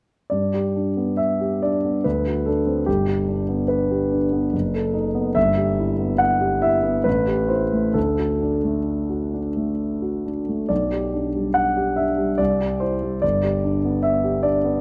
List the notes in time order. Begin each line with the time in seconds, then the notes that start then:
0.30 G2 D5
0.54 G4
0.76 D4
0.97 B3
1.17 E5
1.41 G4
1.62 D4 D5
1.84 B3
2.04 D2 B4
2.27 F#4
2.46 D4 A4
2.66 C4
2.86 G1 G4
3.08 G4
3.28 D4
3.49 B3
3.68 B4
3.91 G4
4.12 D4
4.32 B3
4.53 F#1
4.74 A4
4.94 D#4
5.15 B3
5.35 G1 E5
5.57 G4
5.79 E4
5.99 B3
6.18 F#5
6.41 G4
6.62 E4 E5
6.83 B3
7.04 A1 B4
7.27 G4
7.48 E4 C5
7.73 A3
7.94 D2 A4
8.19 F#4
8.42 D4
8.64 A3
9.10 F#4
9.33 D4
9.57 A3
10.02 F#4
10.25 D4
10.48 A3
10.69 B1 D5
10.92 G4
11.14 D4
11.35 G3
11.54 F#5
11.77 G4
11.96 D4 E5
12.18 G3
12.38 C2 D5
12.61 G4
12.80 E4 C5
13.02 G3
13.22 G1 D5
13.43 G4
13.64 D4
13.85 B3
14.03 E5
14.24 G4
14.43 D4 D5
14.64 B3